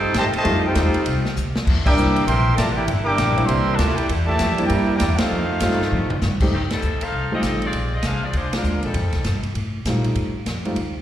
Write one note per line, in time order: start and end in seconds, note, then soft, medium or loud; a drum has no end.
0.00 0.14 G2 medium
0.00 1.48 G3 medium
0.00 1.48 A3 medium
0.00 0.16 C4 loud
0.00 0.16 D#4 loud
0.00 0.17 D#4 loud
0.00 1.48 D#4 medium
0.00 1.48 F4 loud
0.00 0.16 G4 loud
0.00 0.17 A4 medium
0.00 0.17 C5 loud
0.00 0.17 G5 loud
0.14 0.33 A2 medium
0.14 0.26 A3 medium
0.14 snare medium
0.14 hi-hat pedal medium
0.14 ride medium
0.18 0.26 C3 medium
0.18 0.26 D#3 medium
0.18 0.27 G4 loud
0.18 0.27 C5 medium
0.18 0.26 D#5 medium
0.18 0.27 A5 loud
0.33 0.64 C3 medium
0.33 0.64 G4 loud
0.33 0.64 C5 medium
0.33 0.64 D#5 loud
0.33 0.64 A5 loud
0.33 muted upright bass stroke soft
0.33 ride medium
0.38 0.64 D#3 medium
0.38 0.65 A3 loud
0.44 0.75 F2 medium
0.44 0.62 G3 medium
0.44 0.62 A3 medium
0.44 0.62 C4 medium
0.44 0.63 D#4 medium
0.44 0.62 F4 medium
0.44 ride medium
0.66 1.22 C4 loud
0.66 1.22 D#4 medium
0.66 1.23 D#4 medium
0.66 1.23 G4 medium
0.66 1.22 A4 medium
0.66 1.22 C5 medium
0.66 1.22 G5 medium
0.75 0.93 D#2 loud
0.75 0.93 G3 medium
0.75 0.93 A3 medium
0.75 0.93 C4 medium
0.75 0.93 D#4 medium
0.75 0.93 F4 medium
0.75 snare medium
0.75 hi-hat pedal medium
0.75 ride medium
0.94 ride medium
1.06 1.36 C2 medium
1.06 ride medium
1.25 snare medium
1.36 1.66 D2 medium
1.36 hi-hat pedal medium
1.56 snare medium
1.65 1.84 E2 medium
1.65 5.26 D3 medium
1.65 5.26 G3 medium
1.65 5.25 C4 medium
1.65 5.25 E4 loud
1.65 kick medium
1.65 crash medium
1.86 2.24 G3 loud
1.86 2.24 A#3 loud
1.86 2.25 D4 loud
1.86 2.25 A#4 medium
1.86 2.25 E5 medium
1.86 2.25 G5 medium
1.86 2.25 D6 loud
1.86 muted upright bass stroke soft
1.86 kick loud
1.86 crash medium
1.97 2.26 C2 medium
1.97 2.14 G3 medium
1.97 2.14 A#3 medium
1.97 2.15 C4 medium
1.97 2.14 D4 medium
1.97 2.15 E4 medium
1.97 hi-hat pedal medium
2.16 ride medium
2.27 2.56 A#1 medium
2.27 2.55 E3 medium
2.27 2.55 G3 loud
2.27 2.55 C4 medium
2.27 2.56 A#4 medium
2.27 2.56 E5 medium
2.27 2.56 G5 medium
2.27 2.56 C6 loud
2.27 ride medium
2.55 2.87 A1 loud
2.55 2.70 A3 medium
2.55 2.71 F4 medium
2.55 2.71 A#4 medium
2.55 2.71 D5 medium
2.55 2.71 A5 loud
2.55 snare medium
2.55 hi-hat pedal medium
2.55 ride medium
2.73 2.87 A#3 medium
2.73 2.87 E4 medium
2.73 2.88 E4 medium
2.73 2.87 G4 medium
2.73 2.88 A#4 medium
2.73 2.88 D5 medium
2.73 2.77 F#5 medium
2.73 2.88 G5 medium
2.88 3.17 G1 medium
2.88 ride medium
3.05 3.45 G3 loud
3.05 3.45 A#3 medium
3.05 3.45 D4 medium
3.05 3.44 A#4 loud
3.05 3.45 E5 medium
3.05 3.44 G5 medium
3.05 3.45 D6 loud
3.18 3.47 A#1 medium
3.18 snare medium
3.18 hi-hat pedal medium
3.18 ride medium
3.37 3.76 G3 medium
3.37 3.76 A#3 medium
3.37 3.76 C4 medium
3.37 3.77 D4 medium
3.37 3.77 E4 medium
3.37 ride medium
3.46 3.77 C2 loud
3.46 3.78 E3 medium
3.46 3.78 G3 medium
3.46 3.78 C4 medium
3.46 3.74 A#4 medium
3.46 3.78 E5 medium
3.46 3.78 G5 medium
3.46 3.78 C6 loud
3.46 ride medium
3.75 4.08 D2 loud
3.75 3.97 A3 medium
3.75 3.96 F4 medium
3.75 3.95 A#4 medium
3.75 3.96 D5 medium
3.75 3.96 A5 loud
3.75 snare medium
3.75 hi-hat pedal medium
3.75 ride medium
3.95 4.08 A#3 medium
3.95 4.08 E4 medium
3.95 4.08 G4 medium
3.95 4.08 A#4 medium
3.95 4.08 D5 medium
3.95 4.08 G5 loud
3.95 ride medium
4.09 4.38 E2 medium
4.09 ride medium
4.26 4.66 A#2 medium
4.26 4.65 E3 loud
4.26 4.66 A3 medium
4.26 4.65 G4 medium
4.26 4.65 D5 medium
4.26 4.65 E5 medium
4.26 4.66 A5 loud
4.39 4.69 F2 loud
4.39 snare medium
4.39 hi-hat pedal medium
4.39 ride medium
4.58 4.97 G3 medium
4.58 4.98 A#3 medium
4.58 4.98 C4 medium
4.58 4.98 D4 medium
4.58 4.98 E4 medium
4.58 ride medium
4.66 4.99 G2 medium
4.66 4.97 A#3 medium
4.66 4.96 E4 medium
4.66 4.97 G4 medium
4.66 4.96 A#4 medium
4.66 4.96 D5 medium
4.66 4.96 G5 medium
4.66 ride medium
4.98 5.18 E2 loud
4.98 5.17 A#3 medium
4.98 5.17 E4 medium
4.98 5.17 G4 medium
4.98 5.16 A#4 medium
4.98 5.16 D5 medium
4.98 5.16 G5 loud
4.98 snare medium
4.98 hi-hat pedal medium
4.98 ride medium
5.16 6.20 A3 medium
5.16 6.20 C4 medium
5.16 6.20 D#4 medium
5.16 6.20 F4 medium
5.16 6.20 A4 medium
5.16 6.20 C5 medium
5.16 6.20 F5 medium
5.16 muted upright bass stroke soft
5.16 snare loud
5.16 ride medium
5.29 5.60 F2 medium
5.29 6.49 D#3 medium
5.29 6.50 G3 medium
5.29 6.50 A3 medium
5.29 6.50 F4 medium
5.60 5.90 G2 medium
5.60 5.78 G3 medium
5.60 5.78 A3 medium
5.60 5.78 C4 medium
5.60 5.78 D#4 medium
5.60 5.78 F4 medium
5.60 snare medium
5.60 hi-hat pedal medium
5.60 ride medium
5.71 snare soft
5.82 snare soft
5.92 6.09 A2 medium
5.92 high tom medium
6.10 muted upright bass stroke soft
6.10 mid tom medium
6.22 6.51 G2 medium
6.22 snare medium
6.22 hi-hat pedal medium
6.40 6.52 G3 medium
6.40 6.52 A3 medium
6.40 6.52 C4 medium
6.40 6.53 D#4 medium
6.40 6.52 G4 medium
6.40 kick medium
6.40 crash medium
6.52 6.81 F2 medium
6.52 6.61 D#3 medium
6.52 6.61 A3 medium
6.52 6.61 C4 medium
6.52 6.61 G4 medium
6.70 7.00 G3 medium
6.70 7.00 C4 medium
6.70 7.00 D#4 medium
6.70 7.00 A4 loud
6.70 snare medium
6.70 ride medium
6.82 7.00 D2 medium
6.82 hi-hat pedal medium
7.01 7.32 D#4 medium
7.01 7.32 A4 medium
7.01 7.32 C5 medium
7.01 7.32 F5 loud
7.01 muted upright bass stroke soft
7.01 ride medium
7.12 7.41 C2 medium
7.31 7.71 G3 medium
7.31 7.71 A3 medium
7.31 7.71 C4 medium
7.31 7.61 C4 medium
7.31 7.71 D#4 medium
7.31 7.71 F4 medium
7.31 7.61 G4 medium
7.31 7.62 A4 medium
7.31 7.61 D#5 medium
7.42 7.72 A1 medium
7.42 snare medium
7.42 hi-hat pedal medium
7.42 ride medium
7.62 7.92 C4 medium
7.62 7.92 G#4 medium
7.62 ride soft
7.66 7.92 F4 medium
7.66 7.92 D5 medium
7.73 8.02 A#1 medium
7.73 ride medium
7.94 8.05 C4 medium
7.94 8.05 F4 medium
7.94 8.05 G#4 medium
7.94 8.04 D#5 medium
8.03 8.32 C2 medium
8.03 8.24 D4 medium
8.03 8.23 G#4 medium
8.03 8.24 C5 medium
8.03 8.24 F5 loud
8.03 snare medium
8.03 hi-hat pedal medium
8.03 ride medium
8.24 8.35 C4 medium
8.24 8.34 F4 medium
8.24 8.35 G#4 medium
8.24 8.35 D5 medium
8.33 8.63 D2 medium
8.33 8.53 G#3 medium
8.33 8.53 D4 medium
8.33 8.53 F4 medium
8.33 8.53 C5 medium
8.33 ride medium
8.53 8.92 G#3 medium
8.53 8.85 G#3 medium
8.53 8.93 A#3 soft
8.53 8.93 C4 soft
8.53 8.93 D4 soft
8.53 8.85 D4 medium
8.53 8.93 F4 medium
8.53 8.85 F4 medium
8.53 8.85 A#4 medium
8.53 snare medium
8.53 ride medium
8.63 8.74 D#2 medium
8.63 hi-hat pedal soft
8.74 8.83 D2 medium
8.83 8.93 A#1 medium
8.83 9.41 G3 medium
8.83 9.41 C4 medium
8.83 9.41 D#4 medium
8.83 9.41 A4 medium
8.83 ride soft
8.94 9.03 F2 medium
8.94 ride medium
9.03 9.13 D#2 medium
9.12 9.24 C2 medium
9.12 snare soft
9.12 ride soft
9.24 9.54 G2 medium
9.24 snare medium
9.24 hi-hat pedal soft
9.24 ride medium
9.43 ride soft
9.54 9.84 A2 medium
9.54 ride medium
9.85 10.15 A#2 medium
9.85 10.32 G3 medium
9.85 10.32 A3 medium
9.85 10.32 C4 medium
9.85 10.32 D#4 medium
9.85 10.33 F4 medium
9.85 snare medium
9.85 hi-hat pedal medium
9.85 ride medium
10.04 ride soft
10.15 10.45 A2 medium
10.15 ride medium
10.46 10.76 F2 medium
10.46 snare medium
10.46 hi-hat pedal soft
10.46 ride medium
10.65 10.76 G3 medium
10.65 10.76 A3 medium
10.65 10.76 C4 medium
10.65 10.76 D#4 medium
10.65 10.76 F4 medium
10.65 ride soft
10.76 11.02 D2 medium
10.76 ride medium